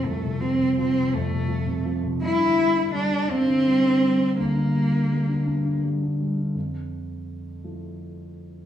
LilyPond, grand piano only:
\new Staff \with { instrumentName = "Grand piano" } { \clef bass \time 6/8 \key f \major \tempo 4. = 55 <c, f, c f>16 c16 f16 c16 f16 c16 f,16 c16 f16 c16 f16 c16 | g,16 d16 g16 d16 g16 d16 g,16 d16 g16 d16 g16 d16 | d,16 d16 g16 d16 g16 d16 g,16 d16 g16 d16 g16 d16 | f,4. <f a e'>4. | }